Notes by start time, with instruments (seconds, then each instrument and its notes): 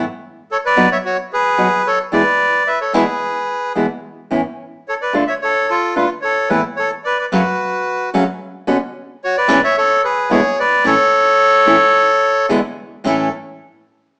0.51 bandoneon A4 C#5
0.65 bandoneon B4 D5
0.76 nylon-string guitar B2 F#3 B3 D#4 F#4
0.92 bandoneon C#5 E5
1.05 bandoneon F#4 C#5
1.33 bandoneon G#4 B4
1.58 nylon-string guitar B2 F#3 B3 D#4 F#4
1.87 bandoneon A4 C#5
2.12 nylon-string guitar E2 B2 E3 G#3 B3 E4, bandoneon B4 D5
2.67 bandoneon B4 E5
2.81 bandoneon A4 C#5
2.93 nylon-string guitar E2 B2 E3 G#3 B3 E4, bandoneon G#4 B4
3.75 nylon-string guitar E2 B2 E3 G#3 B3 E4
4.31 nylon-string guitar A2 E3 B3 C#4 E4
4.88 bandoneon A4 C#5
5.01 bandoneon B4 D5
5.13 nylon-string guitar D3 A3 D4 F4
5.27 bandoneon C#5 E5
5.42 bandoneon A4 C#5
5.68 bandoneon F4 A4
5.96 nylon-string guitar D3 A3 D4 F4, bandoneon F4 B4
6.22 bandoneon A4 C#5
6.49 nylon-string guitar E2 A2 E3 A3 B3 E4, bandoneon E4 B4
6.76 bandoneon A4 C#5
7.04 bandoneon B4 D5
7.19 bandoneon B4 D5
7.32 nylon-string guitar F#2 C#3 F#3 A3 C#4 F#4, bandoneon F#4 B4
8.14 nylon-string guitar F#2 C#3 F#3 A3 C#4 F#4
8.67 nylon-string guitar B2 D3 B3 C#4 F#4
9.24 bandoneon F#4 C#5
9.37 bandoneon B4 D5
9.48 nylon-string guitar E2 A2 E3 A3 C#4 E4
9.64 bandoneon C#5 E5
9.77 bandoneon A4 C#5
10.04 bandoneon G#4 B4
10.30 nylon-string guitar E2 B2 D3 G#3 B3 E4, bandoneon G#4 C#5
10.59 bandoneon B4 D5
10.84 nylon-string guitar A2 E3 A3 C#4 E4, bandoneon A4 C#5
11.66 nylon-string guitar A2 E3 A3 C#4 E4
12.49 nylon-string guitar E2 B2 D3 G#3 B3 E4
13.04 nylon-string guitar A2 E3 A3 C#4 E4, bandoneon A4